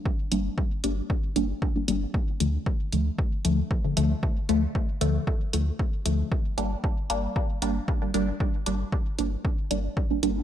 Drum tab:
HH |-x-x-x-x|-x-x-x-x|-x-x-x-x|-x-x-x-x|
BD |o-o-o-o-|o-o-o-o-|o-o-o-o-|o-o-o-o-|

HH |-x-x-x-x|
BD |o-o-o-o-|